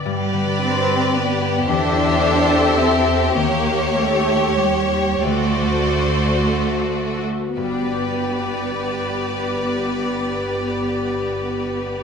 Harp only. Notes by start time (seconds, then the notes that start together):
Already playing: D3 B3 G4 B4 D5
0.06 G2
0.33 D3
0.60 B3
0.88 G4
1.14 D5
1.42 G4
1.68 E3
1.96 E4
2.23 C4
2.50 G4
2.78 E5
3.07 G4
3.36 D#3
3.66 D#4
3.96 C#4
4.27 G4
4.59 C#5
4.92 G4
5.26 D3
5.61 A3
5.99 D4
6.37 F#4
6.78 C5
7.18 F#4
7.57 G2
7.64 G3
7.71 D4
7.78 G4
7.85 B4
7.92 G5